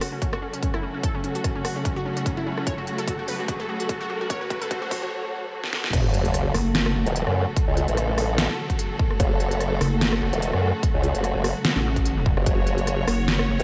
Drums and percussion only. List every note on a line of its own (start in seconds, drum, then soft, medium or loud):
0.01 cross-stick medium
0.01 open hi-hat medium
0.22 kick medium
0.22 closed hi-hat medium
0.33 cross-stick medium
0.53 closed hi-hat medium
0.63 kick medium
0.63 closed hi-hat medium
0.74 cross-stick medium
1.03 kick loud
1.03 closed hi-hat medium
1.24 closed hi-hat medium
1.35 closed hi-hat medium
1.44 kick loud
1.44 cross-stick soft
1.44 closed hi-hat medium
1.65 cross-stick medium
1.65 open hi-hat medium
1.85 kick medium
1.85 closed hi-hat medium
2.17 closed hi-hat medium
2.26 kick loud
2.26 closed hi-hat medium
2.58 cross-stick soft
2.67 kick loud
2.67 closed hi-hat medium
2.87 closed hi-hat medium
2.98 closed hi-hat medium
3.08 kick loud
3.08 closed hi-hat medium
3.28 open hi-hat medium
3.48 kick loud
3.48 closed hi-hat medium
3.80 closed hi-hat medium
3.89 kick loud
3.89 closed hi-hat medium
4.30 kick loud
4.30 closed hi-hat medium
4.50 kick loud
4.50 closed hi-hat medium
4.62 closed hi-hat medium
4.71 kick loud
4.71 closed hi-hat medium
4.91 kick loud
4.91 open hi-hat medium
5.64 snare medium
5.73 snare medium
5.84 snare medium
5.93 kick loud
5.93 closed hi-hat medium
5.93 crash loud
6.14 closed hi-hat medium
6.25 closed hi-hat medium
6.34 cross-stick medium
6.34 closed hi-hat medium
6.54 cross-stick medium
6.54 open hi-hat medium
6.75 snare loud
6.75 closed hi-hat medium
6.86 cross-stick medium
7.06 closed hi-hat medium
7.16 closed hi-hat medium
7.27 cross-stick medium
7.56 kick loud
7.56 closed hi-hat medium
7.77 closed hi-hat medium
7.88 closed hi-hat medium
7.97 cross-stick medium
7.97 closed hi-hat medium
8.18 cross-stick medium
8.18 open hi-hat medium
8.38 snare loud
8.38 closed hi-hat medium
8.70 kick medium
8.70 closed hi-hat medium
8.79 closed hi-hat medium
8.99 kick loud
9.11 cross-stick soft
9.20 kick loud
9.20 closed hi-hat medium
9.40 closed hi-hat medium
9.51 closed hi-hat medium
9.61 cross-stick medium
9.61 closed hi-hat medium
9.81 cross-stick medium
9.81 open hi-hat medium
10.01 snare loud
10.01 closed hi-hat medium
10.13 cross-stick medium
10.33 closed hi-hat medium
10.42 closed hi-hat medium
10.53 cross-stick medium
10.83 kick loud
10.83 closed hi-hat medium
11.03 closed hi-hat medium
11.15 closed hi-hat medium
11.24 cross-stick medium
11.24 closed hi-hat medium
11.44 cross-stick medium
11.44 open hi-hat medium
11.65 snare loud
11.65 closed hi-hat medium
11.96 kick medium
11.96 closed hi-hat medium
12.05 closed hi-hat medium
12.26 kick loud
12.37 cross-stick medium
12.46 kick loud
12.46 closed hi-hat medium
12.67 closed hi-hat soft
12.78 closed hi-hat soft
12.87 cross-stick medium
12.87 closed hi-hat medium
13.08 cross-stick medium
13.08 open hi-hat medium
13.28 snare loud
13.28 closed hi-hat medium
13.39 cross-stick medium
13.60 closed hi-hat medium